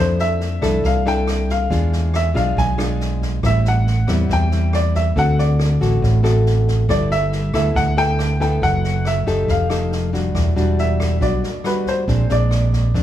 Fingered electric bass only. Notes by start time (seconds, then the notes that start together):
Already playing: F2
0.62 C2
0.84 C2
1.71 E2
2.35 B1
2.57 B1
3.43 A1
4.08 E2
4.29 E2
5.16 D2
5.81 A1
6.02 A1
6.89 G1
7.54 D2
7.76 D2
8.62 F#1
9.27 F#1
9.48 F1
10.35 E1
10.57 E1
11.21 B1
12.08 A#1
12.30 A#1
12.94 F2